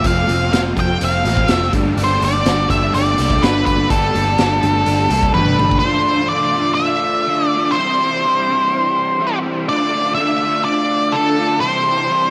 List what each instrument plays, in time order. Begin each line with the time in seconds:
Already playing: tonewheel organ C4 A4 F5 G5
0.02 picked electric bass F1, overdriven electric guitar F3 A3 C4 F4, kick, closed hi-hat
0.07 lead electric guitar F5
0.27 picked electric bass F1, overdriven electric guitar A3 C4 F4, closed hi-hat, high conga
0.51 picked electric bass F1, overdriven electric guitar F3 A3 C4 F4, lead electric guitar F5, snare, closed hi-hat
0.75 picked electric bass F1, overdriven electric guitar A3 C4 F4, kick, closed hi-hat, high conga, low conga
0.80 lead electric guitar G5
0.99 picked electric bass F1, overdriven electric guitar F3 A3 C4 F4, closed hi-hat, low conga
1.05 lead electric guitar F5
1.24 picked electric bass A1, overdriven electric guitar A3 C4 F4, snare, closed hi-hat, high conga
1.37 kick
1.47 picked electric bass F1, overdriven electric guitar F3 A3 C4 F4, lead electric guitar E5, snare, closed hi-hat
1.62 snare
1.73 picked electric bass G1, overdriven electric guitar G3 A3 D4 G4, tonewheel organ D5 A5, kick, closed hi-hat, low conga
1.85 high conga
1.96 picked electric bass G1, overdriven electric guitar G3 A3 D4 G4, closed hi-hat
2.04 lead electric guitar C5
2.21 picked electric bass G1, overdriven electric guitar A3 D4 G4, lead electric guitar D5, closed hi-hat, high conga
2.46 picked electric bass G1, overdriven electric guitar G3 A3 D4 G4, snare, closed hi-hat
2.69 picked electric bass G1, overdriven electric guitar A3 D4 G4, lead electric guitar E5, kick, closed hi-hat, high conga, low conga
2.94 picked electric bass G1, overdriven electric guitar G3 A3 D4 G4, lead electric guitar D5, closed hi-hat, low conga
3.17 picked electric bass C2, overdriven electric guitar A3 D4 G4, snare, closed hi-hat, high conga
3.30 kick, snare
3.41 picked electric bass G1, overdriven electric guitar G3 A3 D4 G4, lead electric guitar B4, snare, closed hi-hat
3.56 snare
3.65 picked electric bass G1, lead electric guitar B4, tonewheel organ B5, kick, closed hi-hat, low conga
3.78 high conga
3.89 picked electric bass G1, overdriven electric guitar G3 A3 D4 G4, lead electric guitar A4, kick, closed hi-hat
4.12 picked electric bass G1, overdriven electric guitar A3 D4 G4, closed hi-hat, high conga
4.36 picked electric bass G1, overdriven electric guitar G3 A3 D4 G4, snare, closed hi-hat
4.61 picked electric bass G1, overdriven electric guitar A3 D4 G4, closed hi-hat, high conga, low conga
4.76 high conga
4.84 picked electric bass G1, overdriven electric guitar G3 A3 D4 G4, closed hi-hat
5.10 picked electric bass C2, overdriven electric guitar A3 D4 G4, closed hi-hat, high conga
5.23 kick
5.34 picked electric bass G1, overdriven electric guitar G3 A3 D4 G4, lead electric guitar B4, high tom
5.46 mid tom
5.59 picked electric bass G1, mid tom, low conga
5.71 kick, high conga
5.79 overdriven electric guitar D3, lead electric guitar C5
5.84 overdriven electric guitar A3 D4 F4, tonewheel organ F4 A4 D5 E5
6.06 overdriven electric guitar A3 D4 F4
6.29 overdriven electric guitar D3 A3 D4, lead electric guitar D5
6.33 overdriven electric guitar F4
6.54 overdriven electric guitar A3 D4 F4
6.74 lead electric guitar E5
7.27 overdriven electric guitar D3 A3 D4 F4
7.46 lead electric guitar D5
7.53 overdriven electric guitar A3 D4 F4
7.72 lead electric guitar C5
7.76 overdriven electric guitar C3 E3 G3 C4 E4, tonewheel organ G4 C5 B5
7.99 overdriven electric guitar G3 C4 E4
8.24 overdriven electric guitar C3 E3 G3 C4 E4
8.49 overdriven electric guitar G3 C4 E4
9.19 overdriven electric guitar E3 G3 C4 E4
9.43 overdriven electric guitar G3 C4 E4
9.67 overdriven electric guitar D3 A3, tonewheel organ F4 A4 D5, lead electric guitar D5
9.71 overdriven electric guitar D4 F4
9.92 overdriven electric guitar A3 D4 F4
10.15 overdriven electric guitar D3 A3, lead electric guitar E5
10.19 overdriven electric guitar D4 F4
10.42 overdriven electric guitar A3 D4 F4
10.65 lead electric guitar D5
11.12 overdriven electric guitar D3 A3 D4, lead electric guitar A4
11.17 overdriven electric guitar F4
11.38 overdriven electric guitar A3 D4 F4
11.61 overdriven electric guitar C3 E3 G3 C4 E4, lead electric guitar C5
11.65 tonewheel organ C4 G4 B5
11.86 overdriven electric guitar G3 C4 E4
12.09 overdriven electric guitar C3 E3 G3 C4 E4